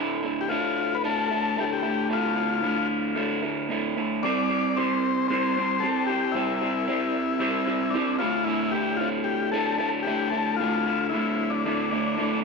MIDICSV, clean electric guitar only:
0, 0, Header, 1, 2, 480
1, 0, Start_track
1, 0, Key_signature, -1, "minor"
1, 0, Tempo, 530973
1, 1900, Time_signature, 4, 2, 24, 8
1, 11248, End_track
2, 0, Start_track
2, 0, Title_t, "Clean electric guitar"
2, 0, Program_c, 0, 27
2, 0, Note_on_c, 0, 38, 81
2, 0, Note_on_c, 0, 45, 79
2, 0, Note_on_c, 0, 50, 92
2, 0, Note_on_c, 0, 57, 93
2, 0, Note_on_c, 0, 64, 79
2, 199, Note_off_c, 0, 64, 0
2, 203, Note_on_c, 0, 64, 67
2, 214, Note_off_c, 0, 57, 0
2, 218, Note_on_c, 0, 57, 62
2, 219, Note_off_c, 0, 50, 0
2, 223, Note_on_c, 0, 50, 65
2, 427, Note_off_c, 0, 45, 0
2, 438, Note_on_c, 0, 45, 71
2, 446, Note_off_c, 0, 50, 0
2, 449, Note_off_c, 0, 57, 0
2, 449, Note_on_c, 0, 50, 67
2, 453, Note_on_c, 0, 57, 82
2, 460, Note_off_c, 0, 64, 0
2, 463, Note_on_c, 0, 64, 83
2, 491, Note_off_c, 0, 38, 0
2, 928, Note_off_c, 0, 45, 0
2, 928, Note_off_c, 0, 50, 0
2, 929, Note_off_c, 0, 57, 0
2, 929, Note_on_c, 0, 38, 78
2, 939, Note_on_c, 0, 45, 90
2, 939, Note_on_c, 0, 50, 93
2, 940, Note_on_c, 0, 57, 99
2, 945, Note_off_c, 0, 64, 0
2, 949, Note_on_c, 0, 64, 106
2, 1175, Note_off_c, 0, 64, 0
2, 1179, Note_on_c, 0, 64, 63
2, 1181, Note_off_c, 0, 57, 0
2, 1187, Note_off_c, 0, 50, 0
2, 1192, Note_on_c, 0, 57, 62
2, 1198, Note_on_c, 0, 50, 60
2, 1408, Note_off_c, 0, 45, 0
2, 1410, Note_off_c, 0, 50, 0
2, 1415, Note_off_c, 0, 38, 0
2, 1418, Note_off_c, 0, 57, 0
2, 1419, Note_on_c, 0, 45, 66
2, 1421, Note_on_c, 0, 50, 75
2, 1429, Note_off_c, 0, 64, 0
2, 1429, Note_on_c, 0, 57, 79
2, 1433, Note_on_c, 0, 64, 81
2, 1647, Note_off_c, 0, 64, 0
2, 1651, Note_off_c, 0, 57, 0
2, 1651, Note_on_c, 0, 64, 64
2, 1655, Note_off_c, 0, 50, 0
2, 1662, Note_on_c, 0, 57, 58
2, 1666, Note_on_c, 0, 50, 60
2, 1882, Note_off_c, 0, 45, 0
2, 1886, Note_off_c, 0, 50, 0
2, 1886, Note_on_c, 0, 38, 82
2, 1890, Note_off_c, 0, 57, 0
2, 1892, Note_on_c, 0, 45, 84
2, 1896, Note_on_c, 0, 50, 88
2, 1900, Note_on_c, 0, 57, 80
2, 1903, Note_off_c, 0, 64, 0
2, 1906, Note_on_c, 0, 64, 103
2, 2123, Note_off_c, 0, 64, 0
2, 2126, Note_off_c, 0, 57, 0
2, 2127, Note_on_c, 0, 64, 67
2, 2137, Note_on_c, 0, 57, 57
2, 2140, Note_off_c, 0, 50, 0
2, 2150, Note_on_c, 0, 50, 59
2, 2354, Note_off_c, 0, 45, 0
2, 2364, Note_on_c, 0, 45, 70
2, 2369, Note_off_c, 0, 50, 0
2, 2370, Note_off_c, 0, 57, 0
2, 2375, Note_off_c, 0, 38, 0
2, 2380, Note_on_c, 0, 50, 74
2, 2381, Note_on_c, 0, 57, 68
2, 2383, Note_off_c, 0, 64, 0
2, 2387, Note_on_c, 0, 64, 79
2, 2842, Note_off_c, 0, 45, 0
2, 2842, Note_off_c, 0, 50, 0
2, 2846, Note_off_c, 0, 57, 0
2, 2848, Note_on_c, 0, 38, 91
2, 2853, Note_on_c, 0, 45, 82
2, 2853, Note_on_c, 0, 50, 79
2, 2857, Note_on_c, 0, 57, 83
2, 2859, Note_off_c, 0, 64, 0
2, 2862, Note_on_c, 0, 64, 94
2, 3091, Note_off_c, 0, 64, 0
2, 3092, Note_off_c, 0, 57, 0
2, 3095, Note_on_c, 0, 64, 67
2, 3103, Note_on_c, 0, 57, 64
2, 3108, Note_off_c, 0, 50, 0
2, 3118, Note_on_c, 0, 50, 60
2, 3327, Note_off_c, 0, 45, 0
2, 3337, Note_off_c, 0, 38, 0
2, 3337, Note_off_c, 0, 50, 0
2, 3338, Note_on_c, 0, 45, 74
2, 3345, Note_off_c, 0, 57, 0
2, 3348, Note_on_c, 0, 50, 74
2, 3353, Note_off_c, 0, 64, 0
2, 3355, Note_on_c, 0, 57, 69
2, 3357, Note_on_c, 0, 64, 82
2, 3581, Note_off_c, 0, 64, 0
2, 3582, Note_off_c, 0, 57, 0
2, 3584, Note_on_c, 0, 64, 64
2, 3586, Note_off_c, 0, 50, 0
2, 3593, Note_on_c, 0, 57, 58
2, 3597, Note_on_c, 0, 50, 64
2, 3808, Note_off_c, 0, 45, 0
2, 3815, Note_off_c, 0, 57, 0
2, 3817, Note_off_c, 0, 50, 0
2, 3822, Note_on_c, 0, 48, 88
2, 3830, Note_on_c, 0, 55, 85
2, 3831, Note_on_c, 0, 60, 87
2, 3840, Note_off_c, 0, 64, 0
2, 3841, Note_on_c, 0, 64, 88
2, 3842, Note_on_c, 0, 67, 77
2, 3843, Note_on_c, 0, 72, 96
2, 4055, Note_off_c, 0, 72, 0
2, 4059, Note_on_c, 0, 72, 66
2, 4062, Note_off_c, 0, 67, 0
2, 4065, Note_on_c, 0, 67, 68
2, 4070, Note_off_c, 0, 60, 0
2, 4072, Note_off_c, 0, 64, 0
2, 4074, Note_on_c, 0, 60, 58
2, 4075, Note_on_c, 0, 64, 58
2, 4303, Note_off_c, 0, 60, 0
2, 4306, Note_on_c, 0, 60, 71
2, 4308, Note_off_c, 0, 64, 0
2, 4312, Note_on_c, 0, 64, 73
2, 4317, Note_off_c, 0, 67, 0
2, 4320, Note_on_c, 0, 67, 74
2, 4325, Note_off_c, 0, 72, 0
2, 4329, Note_on_c, 0, 72, 76
2, 4780, Note_off_c, 0, 48, 0
2, 4781, Note_off_c, 0, 60, 0
2, 4784, Note_off_c, 0, 55, 0
2, 4784, Note_on_c, 0, 48, 78
2, 4787, Note_on_c, 0, 55, 77
2, 4792, Note_off_c, 0, 67, 0
2, 4792, Note_on_c, 0, 60, 94
2, 4793, Note_off_c, 0, 72, 0
2, 4797, Note_off_c, 0, 64, 0
2, 4800, Note_on_c, 0, 64, 99
2, 4803, Note_on_c, 0, 67, 94
2, 4804, Note_on_c, 0, 72, 89
2, 5022, Note_off_c, 0, 72, 0
2, 5028, Note_off_c, 0, 67, 0
2, 5032, Note_off_c, 0, 60, 0
2, 5033, Note_on_c, 0, 72, 67
2, 5039, Note_on_c, 0, 67, 62
2, 5043, Note_off_c, 0, 64, 0
2, 5043, Note_on_c, 0, 60, 61
2, 5046, Note_on_c, 0, 64, 63
2, 5250, Note_off_c, 0, 60, 0
2, 5261, Note_on_c, 0, 60, 76
2, 5264, Note_off_c, 0, 67, 0
2, 5265, Note_off_c, 0, 48, 0
2, 5265, Note_off_c, 0, 64, 0
2, 5267, Note_off_c, 0, 55, 0
2, 5268, Note_off_c, 0, 72, 0
2, 5268, Note_on_c, 0, 64, 69
2, 5275, Note_on_c, 0, 67, 74
2, 5278, Note_on_c, 0, 72, 89
2, 5482, Note_off_c, 0, 72, 0
2, 5493, Note_off_c, 0, 67, 0
2, 5493, Note_on_c, 0, 72, 65
2, 5504, Note_off_c, 0, 60, 0
2, 5504, Note_on_c, 0, 67, 60
2, 5506, Note_off_c, 0, 64, 0
2, 5510, Note_on_c, 0, 64, 59
2, 5515, Note_on_c, 0, 60, 51
2, 5731, Note_off_c, 0, 60, 0
2, 5734, Note_on_c, 0, 48, 89
2, 5735, Note_on_c, 0, 55, 77
2, 5739, Note_off_c, 0, 72, 0
2, 5742, Note_on_c, 0, 60, 90
2, 5744, Note_off_c, 0, 64, 0
2, 5745, Note_off_c, 0, 67, 0
2, 5748, Note_on_c, 0, 64, 85
2, 5750, Note_on_c, 0, 72, 80
2, 5756, Note_on_c, 0, 67, 93
2, 5963, Note_off_c, 0, 72, 0
2, 5973, Note_off_c, 0, 67, 0
2, 5974, Note_on_c, 0, 72, 65
2, 5982, Note_off_c, 0, 60, 0
2, 5984, Note_off_c, 0, 64, 0
2, 5984, Note_on_c, 0, 67, 60
2, 5988, Note_on_c, 0, 64, 57
2, 5993, Note_on_c, 0, 60, 60
2, 6201, Note_off_c, 0, 60, 0
2, 6210, Note_off_c, 0, 64, 0
2, 6212, Note_on_c, 0, 60, 75
2, 6214, Note_on_c, 0, 64, 73
2, 6216, Note_off_c, 0, 72, 0
2, 6218, Note_off_c, 0, 67, 0
2, 6220, Note_off_c, 0, 48, 0
2, 6220, Note_off_c, 0, 55, 0
2, 6227, Note_on_c, 0, 72, 67
2, 6229, Note_on_c, 0, 67, 77
2, 6680, Note_off_c, 0, 60, 0
2, 6681, Note_on_c, 0, 48, 84
2, 6683, Note_on_c, 0, 55, 89
2, 6684, Note_off_c, 0, 64, 0
2, 6686, Note_off_c, 0, 72, 0
2, 6687, Note_off_c, 0, 67, 0
2, 6687, Note_on_c, 0, 64, 84
2, 6691, Note_on_c, 0, 60, 86
2, 6696, Note_on_c, 0, 72, 107
2, 6697, Note_on_c, 0, 67, 89
2, 6917, Note_off_c, 0, 72, 0
2, 6927, Note_off_c, 0, 67, 0
2, 6928, Note_on_c, 0, 72, 64
2, 6937, Note_on_c, 0, 67, 65
2, 6939, Note_off_c, 0, 60, 0
2, 6939, Note_off_c, 0, 64, 0
2, 6943, Note_on_c, 0, 64, 62
2, 6950, Note_on_c, 0, 60, 59
2, 7162, Note_off_c, 0, 60, 0
2, 7172, Note_off_c, 0, 48, 0
2, 7173, Note_off_c, 0, 55, 0
2, 7173, Note_on_c, 0, 60, 69
2, 7174, Note_off_c, 0, 67, 0
2, 7180, Note_off_c, 0, 64, 0
2, 7180, Note_off_c, 0, 72, 0
2, 7184, Note_on_c, 0, 64, 81
2, 7185, Note_on_c, 0, 67, 79
2, 7191, Note_on_c, 0, 72, 89
2, 7404, Note_off_c, 0, 60, 0
2, 7409, Note_off_c, 0, 72, 0
2, 7410, Note_off_c, 0, 67, 0
2, 7412, Note_off_c, 0, 64, 0
2, 7412, Note_on_c, 0, 64, 80
2, 7420, Note_on_c, 0, 57, 87
2, 7421, Note_on_c, 0, 50, 73
2, 7432, Note_on_c, 0, 45, 83
2, 7435, Note_on_c, 0, 38, 70
2, 7639, Note_off_c, 0, 45, 0
2, 7642, Note_off_c, 0, 38, 0
2, 7645, Note_on_c, 0, 38, 79
2, 7650, Note_on_c, 0, 45, 82
2, 7655, Note_off_c, 0, 57, 0
2, 7656, Note_off_c, 0, 50, 0
2, 7659, Note_on_c, 0, 57, 103
2, 7660, Note_on_c, 0, 50, 89
2, 7665, Note_off_c, 0, 64, 0
2, 7669, Note_on_c, 0, 64, 95
2, 7886, Note_off_c, 0, 64, 0
2, 7890, Note_on_c, 0, 64, 77
2, 7901, Note_off_c, 0, 57, 0
2, 7904, Note_on_c, 0, 57, 59
2, 7909, Note_off_c, 0, 50, 0
2, 7912, Note_on_c, 0, 50, 52
2, 8116, Note_off_c, 0, 45, 0
2, 8127, Note_on_c, 0, 45, 71
2, 8130, Note_off_c, 0, 50, 0
2, 8133, Note_on_c, 0, 50, 74
2, 8140, Note_off_c, 0, 57, 0
2, 8143, Note_off_c, 0, 64, 0
2, 8144, Note_on_c, 0, 57, 74
2, 8146, Note_on_c, 0, 64, 76
2, 8174, Note_off_c, 0, 38, 0
2, 8603, Note_off_c, 0, 45, 0
2, 8606, Note_on_c, 0, 38, 85
2, 8614, Note_off_c, 0, 64, 0
2, 8614, Note_on_c, 0, 45, 94
2, 8615, Note_off_c, 0, 50, 0
2, 8616, Note_off_c, 0, 57, 0
2, 8619, Note_on_c, 0, 50, 102
2, 8619, Note_on_c, 0, 57, 90
2, 8625, Note_on_c, 0, 64, 100
2, 8830, Note_off_c, 0, 64, 0
2, 8841, Note_on_c, 0, 64, 75
2, 8851, Note_off_c, 0, 57, 0
2, 8852, Note_off_c, 0, 50, 0
2, 8855, Note_on_c, 0, 57, 64
2, 8856, Note_on_c, 0, 50, 60
2, 9080, Note_off_c, 0, 45, 0
2, 9091, Note_on_c, 0, 45, 75
2, 9096, Note_off_c, 0, 57, 0
2, 9097, Note_off_c, 0, 64, 0
2, 9098, Note_off_c, 0, 50, 0
2, 9100, Note_on_c, 0, 57, 75
2, 9101, Note_on_c, 0, 50, 78
2, 9107, Note_on_c, 0, 64, 88
2, 9134, Note_off_c, 0, 38, 0
2, 9316, Note_off_c, 0, 64, 0
2, 9327, Note_on_c, 0, 64, 69
2, 9334, Note_off_c, 0, 57, 0
2, 9337, Note_on_c, 0, 57, 60
2, 9346, Note_off_c, 0, 50, 0
2, 9349, Note_on_c, 0, 50, 55
2, 9573, Note_off_c, 0, 45, 0
2, 9575, Note_on_c, 0, 38, 85
2, 9576, Note_off_c, 0, 50, 0
2, 9580, Note_off_c, 0, 57, 0
2, 9583, Note_on_c, 0, 45, 88
2, 9584, Note_off_c, 0, 64, 0
2, 9587, Note_on_c, 0, 50, 72
2, 9591, Note_on_c, 0, 57, 97
2, 9595, Note_on_c, 0, 64, 92
2, 9805, Note_off_c, 0, 64, 0
2, 9816, Note_on_c, 0, 64, 70
2, 9817, Note_off_c, 0, 57, 0
2, 9825, Note_off_c, 0, 50, 0
2, 9828, Note_on_c, 0, 57, 54
2, 9836, Note_on_c, 0, 50, 59
2, 10036, Note_off_c, 0, 45, 0
2, 10047, Note_off_c, 0, 50, 0
2, 10047, Note_on_c, 0, 45, 78
2, 10053, Note_off_c, 0, 57, 0
2, 10055, Note_off_c, 0, 38, 0
2, 10058, Note_on_c, 0, 50, 76
2, 10064, Note_off_c, 0, 64, 0
2, 10064, Note_on_c, 0, 57, 66
2, 10075, Note_on_c, 0, 64, 75
2, 10524, Note_off_c, 0, 45, 0
2, 10527, Note_off_c, 0, 50, 0
2, 10527, Note_on_c, 0, 38, 83
2, 10529, Note_off_c, 0, 57, 0
2, 10535, Note_off_c, 0, 64, 0
2, 10535, Note_on_c, 0, 45, 91
2, 10538, Note_on_c, 0, 50, 95
2, 10540, Note_on_c, 0, 57, 89
2, 10546, Note_on_c, 0, 64, 83
2, 10754, Note_off_c, 0, 64, 0
2, 10764, Note_on_c, 0, 64, 70
2, 10775, Note_off_c, 0, 57, 0
2, 10780, Note_off_c, 0, 50, 0
2, 10785, Note_on_c, 0, 57, 64
2, 10791, Note_on_c, 0, 50, 64
2, 10991, Note_off_c, 0, 45, 0
2, 11002, Note_on_c, 0, 45, 82
2, 11003, Note_off_c, 0, 50, 0
2, 11008, Note_off_c, 0, 57, 0
2, 11009, Note_off_c, 0, 38, 0
2, 11012, Note_off_c, 0, 64, 0
2, 11014, Note_on_c, 0, 50, 76
2, 11019, Note_on_c, 0, 57, 78
2, 11023, Note_on_c, 0, 64, 82
2, 11223, Note_off_c, 0, 64, 0
2, 11236, Note_off_c, 0, 57, 0
2, 11248, Note_off_c, 0, 45, 0
2, 11248, Note_off_c, 0, 50, 0
2, 11248, End_track
0, 0, End_of_file